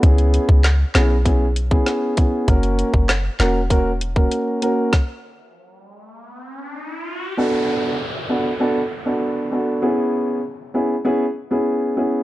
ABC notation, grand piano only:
X:1
M:4/4
L:1/16
Q:1/4=98
K:Bdor
V:1 name="Grand piano"
[B,CEG]4 z2 [B,CEG] z [B,CEG] z2 [B,CEG]3 [B,CEG]2 | [^A,CF^A]4 z2 [A,CFA] z [A,CFA] z2 [A,CFA]3 [A,CFA]2 | z16 | [B,DFA]4 z2 [B,DFA] z [B,DFA] z2 [B,DFA]3 [B,DFA]2 |
[B,CEG]4 z2 [B,CEG] z [B,CEG] z2 [B,CEG]3 [B,CEG]2 |]